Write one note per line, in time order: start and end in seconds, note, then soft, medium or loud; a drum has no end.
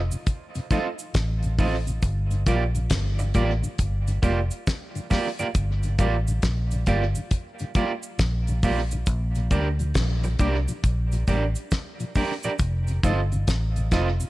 0.11 0.16 F2 medium
0.11 0.16 C3 medium
0.11 cabasa medium
0.26 kick loud
0.26 closed hi-hat loud
0.26 cabasa medium
0.55 0.60 F2 medium
0.55 0.60 C3 medium
0.55 closed hi-hat medium
0.55 cabasa soft
0.71 0.80 F3 medium
0.71 0.80 A3 medium
0.71 0.87 C4 medium
0.71 0.80 D#4 medium
0.71 0.87 F4 medium
0.71 0.87 A4 medium
0.71 0.87 D#5 medium
0.71 kick loud
0.71 closed hi-hat medium
0.71 cabasa soft
0.99 closed hi-hat soft
0.99 cabasa medium
1.14 1.99 A1 loud
1.14 kick loud
1.14 snare loud
1.14 closed hi-hat loud
1.14 cabasa medium
1.43 1.48 F2 medium
1.43 1.48 C3 medium
1.43 closed hi-hat soft
1.43 cabasa soft
1.58 1.67 F3 medium
1.58 1.68 A3 medium
1.58 1.75 C4 medium
1.58 1.68 D#4 medium
1.58 1.75 F4 medium
1.58 1.75 A4 medium
1.58 1.75 D#5 loud
1.58 kick loud
1.58 open hi-hat medium
1.58 cabasa medium
1.87 1.92 F2 medium
1.87 1.92 C3 medium
1.87 closed hi-hat soft
1.87 cabasa medium
2.02 2.43 G1 loud
2.02 kick loud
2.02 closed hi-hat medium
2.02 cabasa medium
2.31 2.36 G2 medium
2.31 2.36 D3 medium
2.31 closed hi-hat medium
2.31 cabasa soft
2.46 2.87 A#1 medium
2.46 2.56 G3 medium
2.46 2.56 A#3 medium
2.46 2.62 A#3 loud
2.46 2.56 F4 medium
2.46 2.63 F4 medium
2.46 2.63 G4 medium
2.46 2.63 D5 medium
2.46 kick loud
2.46 closed hi-hat medium
2.46 cabasa medium
2.75 2.80 G2 medium
2.75 2.80 D3 medium
2.75 closed hi-hat soft
2.75 cabasa medium
2.90 3.31 G1 medium
2.90 kick loud
2.90 snare loud
2.90 closed hi-hat loud
2.90 cabasa medium
3.19 3.24 G2 medium
3.19 3.24 D3 medium
3.19 muted clean electric guitar stroke soft
3.19 closed hi-hat medium
3.19 cabasa medium
3.34 3.61 A1 medium
3.34 3.44 G3 medium
3.34 3.50 A#3 medium
3.34 3.44 A#3 medium
3.34 3.50 F4 medium
3.34 3.44 F4 medium
3.34 3.50 G4 loud
3.34 3.51 D5 loud
3.34 kick medium
3.34 closed hi-hat medium
3.34 cabasa medium
3.63 3.68 G2 medium
3.63 3.68 D3 medium
3.63 cabasa medium
3.78 4.20 G1 loud
3.78 kick loud
3.78 closed hi-hat loud
3.78 cabasa medium
4.07 4.12 G2 medium
4.07 4.12 D3 medium
4.07 closed hi-hat medium
4.07 cabasa medium
4.22 4.49 F1 medium
4.22 4.32 G3 medium
4.22 4.38 A#3 medium
4.22 4.32 A#3 medium
4.22 4.38 F4 medium
4.22 4.32 F4 medium
4.22 4.39 G4 medium
4.22 4.39 D5 medium
4.22 kick loud
4.22 closed hi-hat medium
4.22 cabasa medium
4.51 closed hi-hat soft
4.51 cabasa medium
4.67 kick loud
4.67 snare loud
4.67 closed hi-hat loud
4.67 cabasa medium
4.95 5.00 G2 medium
4.95 5.00 D3 medium
4.95 closed hi-hat soft
4.95 cabasa medium
5.10 5.20 G3 medium
5.10 5.26 A#3 medium
5.10 5.20 A#3 medium
5.10 5.26 F4 medium
5.10 5.20 F4 medium
5.10 5.26 G4 medium
5.10 5.27 D5 loud
5.10 kick medium
5.10 snare medium
5.10 open hi-hat medium
5.10 cabasa soft
5.39 5.44 G2 medium
5.39 5.44 D3 medium
5.39 5.47 A#3 medium
5.39 5.46 F4 medium
5.39 5.46 G4 medium
5.39 5.46 D5 medium
5.39 closed hi-hat soft
5.39 cabasa medium
5.55 5.96 G1 loud
5.55 kick loud
5.55 closed hi-hat medium
5.55 cabasa medium
5.83 5.89 G2 medium
5.83 5.89 D3 medium
5.83 closed hi-hat medium
5.83 cabasa soft
5.98 6.39 A1 loud
5.98 6.08 G3 medium
5.98 6.14 A#3 medium
5.98 6.08 A#3 medium
5.98 6.15 F4 medium
5.98 6.08 F4 medium
5.98 6.15 G4 medium
5.98 6.15 D5 loud
5.98 kick loud
5.98 closed hi-hat medium
5.98 cabasa medium
6.27 6.33 G2 medium
6.27 6.32 D3 medium
6.27 cabasa medium
6.42 6.84 A#1 medium
6.42 kick loud
6.42 snare loud
6.42 closed hi-hat loud
6.42 cabasa medium
6.71 6.77 G2 medium
6.71 6.77 D3 medium
6.71 closed hi-hat soft
6.71 cabasa medium
6.86 7.13 G1 medium
6.86 6.96 G3 medium
6.86 7.03 A#3 medium
6.86 6.96 A#3 medium
6.86 7.03 F4 loud
6.86 6.96 F4 loud
6.86 7.03 G4 medium
6.86 7.03 D5 loud
6.86 kick medium
6.86 closed hi-hat medium
6.86 cabasa medium
7.15 7.21 G2 medium
7.15 7.21 D3 medium
7.15 closed hi-hat soft
7.15 cabasa medium
7.31 kick loud
7.31 closed hi-hat loud
7.31 cabasa medium
7.59 7.65 G2 medium
7.59 7.65 D3 medium
7.59 closed hi-hat medium
7.59 cabasa soft
7.75 7.84 G3 medium
7.75 7.91 A#3 medium
7.75 7.84 A#3 medium
7.75 7.91 F4 medium
7.75 7.85 F4 loud
7.75 7.91 G4 medium
7.75 7.91 D5 medium
7.75 kick loud
7.75 closed hi-hat medium
7.75 cabasa soft
8.03 cabasa medium
8.19 9.03 A#1 loud
8.19 kick loud
8.19 snare loud
8.19 closed hi-hat loud
8.19 cabasa medium
8.47 8.53 G2 medium
8.47 8.53 D3 medium
8.47 closed hi-hat soft
8.47 cabasa medium
8.63 8.72 G3 medium
8.63 8.79 A#3 medium
8.63 8.72 A#3 medium
8.63 8.79 F4 medium
8.63 8.73 F4 medium
8.63 8.79 G4 medium
8.63 8.80 D5 medium
8.63 kick loud
8.63 open hi-hat medium
8.63 cabasa medium
8.91 8.97 G2 medium
8.91 8.97 D3 medium
8.91 closed hi-hat soft
8.91 cabasa medium
9.06 9.48 A#1 loud
9.06 kick loud
9.06 closed hi-hat medium
9.06 cabasa medium
9.35 9.41 A#2 medium
9.35 9.41 F3 medium
9.35 closed hi-hat soft
9.35 cabasa soft
9.51 9.92 D2 loud
9.51 9.60 G3 medium
9.51 9.60 A#3 medium
9.51 9.67 D4 medium
9.51 9.60 D4 medium
9.51 9.67 G4 medium
9.51 9.67 A#4 medium
9.51 9.67 D5 medium
9.51 kick loud
9.51 closed hi-hat medium
9.51 cabasa medium
9.79 9.85 A#2 medium
9.79 9.85 F3 medium
9.79 closed hi-hat soft
9.79 cabasa medium
9.94 10.36 A#1 loud
9.94 kick loud
9.94 snare loud
9.94 closed hi-hat loud
9.94 cabasa medium
10.24 10.29 A#2 medium
10.24 10.29 F3 medium
10.24 muted clean electric guitar stroke soft
10.24 closed hi-hat medium
10.24 cabasa medium
10.39 10.66 C2 medium
10.39 10.49 G3 medium
10.39 10.49 A#3 medium
10.39 10.55 D4 medium
10.39 10.49 D4 loud
10.39 10.55 G4 loud
10.39 10.56 A#4 medium
10.39 10.56 D5 loud
10.39 kick medium
10.39 closed hi-hat medium
10.39 cabasa medium
10.68 10.73 A#2 medium
10.68 10.73 F3 medium
10.68 closed hi-hat soft
10.68 cabasa medium
10.84 11.24 A#1 loud
10.84 kick loud
10.84 closed hi-hat medium
10.84 cabasa medium
11.12 11.17 A#2 medium
11.12 11.17 F3 medium
11.12 closed hi-hat medium
11.12 cabasa soft
11.27 11.54 A1 medium
11.27 11.36 G3 medium
11.27 11.36 A#3 medium
11.27 11.43 D4 medium
11.27 11.37 D4 medium
11.27 11.43 G4 medium
11.27 11.44 A#4 medium
11.27 11.44 D5 medium
11.27 kick loud
11.27 closed hi-hat medium
11.27 cabasa medium
11.55 closed hi-hat soft
11.55 cabasa medium
11.71 kick loud
11.71 snare loud
11.71 closed hi-hat loud
11.71 cabasa medium
12.00 12.05 A#2 medium
12.00 12.05 F3 medium
12.00 closed hi-hat medium
12.00 cabasa soft
12.15 12.24 G3 medium
12.15 12.24 A#3 medium
12.15 12.25 D4 medium
12.15 12.31 D4 medium
12.15 12.32 G4 loud
12.15 12.32 A#4 loud
12.15 12.32 D5 loud
12.15 kick loud
12.15 open hi-hat medium
12.15 cabasa soft
12.43 12.49 A#2 medium
12.43 12.49 F3 medium
12.43 12.51 D4 medium
12.43 12.51 G4 medium
12.43 12.51 A#4 medium
12.43 12.51 D5 medium
12.43 closed hi-hat soft
12.43 cabasa medium
12.59 13.00 F1 loud
12.59 kick loud
12.59 closed hi-hat medium
12.59 cabasa medium
12.87 12.93 F2 medium
12.87 12.93 C3 medium
12.87 closed hi-hat medium
12.87 cabasa soft
13.03 13.44 G1 loud
13.03 13.13 F3 medium
13.03 13.13 A3 medium
13.03 13.19 C4 medium
13.03 13.13 D#4 medium
13.03 13.19 F4 medium
13.03 13.20 A4 medium
13.03 13.20 D#5 medium
13.03 kick loud
13.03 closed hi-hat medium
13.03 cabasa medium
13.32 13.37 F2 medium
13.32 13.37 C3 medium
13.32 closed hi-hat soft
13.32 cabasa medium
13.47 13.88 A1 medium
13.47 kick loud
13.47 snare loud
13.47 closed hi-hat loud
13.47 cabasa medium
13.76 13.81 F2 medium
13.76 13.81 C3 medium
13.76 closed hi-hat medium
13.76 cabasa medium
13.91 14.18 F1 loud
13.91 14.00 F3 medium
13.91 14.01 A3 medium
13.91 14.08 C4 medium
13.91 14.01 D#4 medium
13.91 14.08 F4 loud
13.91 14.08 A4 loud
13.91 14.08 D#5 loud
13.91 kick medium
13.91 snare medium
13.91 closed hi-hat medium
13.91 cabasa medium
14.20 14.25 F2 medium
14.20 14.25 C3 medium
14.20 closed hi-hat soft
14.20 cabasa medium